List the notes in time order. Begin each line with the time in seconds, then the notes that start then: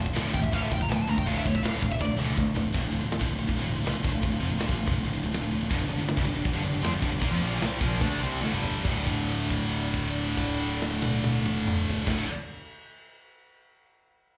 Already playing: D1 D2 A2 D3 F3 A3 F4
0.06 kick
0.13 D1 D2 A2 D3, snare, crash
0.33 A1 D2 A2 G5, kick
0.42 E5, kick
0.52 D1 D2 A2 D3 F5, kick, crash
0.63 E5
0.71 G1 D2 A2 G5, kick
0.81 A#5, kick
0.89 D1 D2 A2 A5, snare, crash
0.97 G5
1.02 A5
1.07 D2 A2 A#5
1.18 G5, kick
1.26 D1 D2 A2 D3 F5, kick, crash
1.38 E5
1.44 D2 A2 C#5, kick
1.55 E5, kick
1.62 D1 D2 A2 D3 F5, snare, crash
1.80 D1 D2 A2, kick
1.92 E5, kick
1.99 D1 D2 A2 D5, kick, high tom
2.17 C#2 D2 A2 D3
2.35 D2 A2, kick
2.55 D1 D2 A2, floor tom
2.72 D1 D2 A2 D3 F3 A3 F4, kick, crash
2.82 D1 D2 A2
2.91 D1 D2 A2
3.01 D1 D2 A2
3.11 snare, crash
3.19 G1 G2 D3, kick
3.29 D1 D2 A2
3.39 D1 D2 A2
3.47 D1 D2 A2, kick, crash
3.57 D1 D2 A2
3.66 D1 D2 A2
3.75 D1 D2 A2
3.84 C2 C3 G3, snare, crash
3.95 D1 D2 A2
4.03 D1 D2 A2, kick
4.13 D1 D2 A2
4.22 D1 D2 A2, kick, crash
4.32 D1 D2 A2
4.40 F1 F2 C3
4.50 D1 D2 A2
4.58 D1 D2 A2, snare, crash
4.68 C2 C3 G3, kick
4.77 D1 D2 A2
4.86 F1 F2 C3, kick
4.95 D1 D2 A2, crash
5.04 D1 D2 A2
5.13 D1 D2 A2
5.23 D1 D2 A2
5.32 D1 D2 A2, snare, crash
5.42 D1 D2 A2
5.51 D1 D2 A2
5.61 D1 D2 A2
5.69 G1 G2 D3 G3 G4 D5, kick, crash
5.78 G1 G2 D3
5.88 G1 G2 D3
5.98 G1 G2 D3
6.08 snare, crash
6.16 C2 C3 G3, kick
6.25 G1 G2 D3
6.34 G1 G2 D3
6.44 G1 G2 D3, kick, crash
6.53 G1 G2 D3
6.63 G1 G2 D3
6.73 G1 G2 D3
6.81 F2 F3 C4, snare, crash
6.91 G1 G2 D3
7.01 G1 G2 D3, kick
7.11 G1 G2 D3
7.20 D#2 D#3 A#3, kick, crash
7.30 F2 F3 C4
7.39 A#1 A#2 F3 A#3
7.59 C2 C3 G3 C4, snare, crash
7.78 A#1 A#2 F3 A#3, kick
7.99 D2 D3 A3 D4, kick, crash
8.19 C2 C3 G3 C4
8.40 D2 D3 A3, snare
8.51 G1 G2 D3 G3
8.64 floor tom
8.82 D1 D2 A2 D3 A3 F#4 D5, kick, crash
8.86 D3
9.07 kick, crash
9.29 crash
9.50 kick, crash
9.72 crash
9.94 kick, crash
10.16 crash
10.37 kick, crash
10.59 crash
10.82 snare
11.02 high tom
11.24 high tom
11.46 mid tom
11.67 mid tom
11.89 floor tom
12.04 D1 D2 A2 D3 A3 F#4 D5, kick, snare, crash
12.08 D3